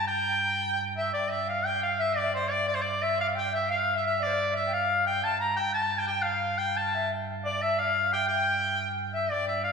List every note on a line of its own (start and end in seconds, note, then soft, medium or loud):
0.00 1.11 G2 medium
0.08 0.90 G5 medium
0.08 0.72 G5 medium
0.97 1.12 E5 medium
1.13 5.22 G2 medium
1.13 1.44 D5 medium
1.13 1.32 D5 medium
1.30 1.47 E5 medium
1.46 1.62 F5 medium
1.46 1.67 F5 medium
1.64 1.84 G5 medium
1.64 1.82 G5 medium
1.82 2.01 F5 medium
1.82 2.00 F5 medium
1.99 2.20 E5 medium
1.99 2.18 E5 medium
2.17 2.33 D5 medium
2.17 2.25 D5 medium
2.23 2.31 E5 medium
2.30 2.67 D5 medium
2.34 2.52 C5 medium
2.51 2.67 D5 medium
2.68 2.79 D5 medium
2.68 2.76 D5 medium
2.75 2.83 C5 medium
2.81 3.04 D5 medium
2.81 3.00 D5 medium
3.01 3.20 E5 medium
3.01 3.19 E5 medium
3.19 3.36 F5 medium
3.19 3.28 F5 medium
3.35 3.51 G5 medium
3.35 3.52 G5 medium
3.51 3.70 E5 medium
3.51 3.69 E5 medium
3.68 3.95 F5 medium
3.68 3.94 F5 medium
3.93 4.21 E5 medium
3.93 4.04 E5 medium
4.06 4.24 E5 medium
4.19 4.28 D5 medium
4.19 4.56 D5 medium
4.26 4.34 C5 medium
4.33 4.54 D5 medium
4.53 4.64 E5 medium
4.53 4.75 E5 medium
4.66 4.74 G5 medium
4.73 5.08 F5 medium
4.73 5.06 F5 medium
5.06 5.22 G5 medium
5.06 5.25 G5 medium
5.23 9.29 G2 medium
5.23 5.43 A5 medium
5.23 5.40 A5 loud
5.40 5.56 A#5 medium
5.40 5.61 A#5 medium
5.56 5.72 G5 medium
5.56 5.75 G5 medium
5.73 6.00 A5 loud
5.73 6.10 A5 medium
5.99 6.07 G5 medium
6.07 6.24 G5 medium
6.07 6.27 G5 medium
6.22 6.60 F5 medium
6.22 6.57 F5 medium
6.58 6.78 G5 medium
6.76 6.96 A5 medium
6.76 7.10 A5 medium
6.94 7.10 E5 medium
7.44 7.63 D5 medium
7.44 7.60 D5 medium
7.62 7.80 E5 medium
7.78 8.14 F5 medium
7.78 8.12 F5 loud
8.13 8.29 G5 medium
8.13 8.27 G5 loud
8.28 8.92 G5 loud
8.28 8.93 G5 medium
9.13 9.29 E5 medium
9.13 9.32 E5 medium
9.30 9.72 G2 medium
9.30 9.72 D5 medium
9.30 9.47 D5 medium
9.48 9.63 E5 medium
9.63 9.71 F5 medium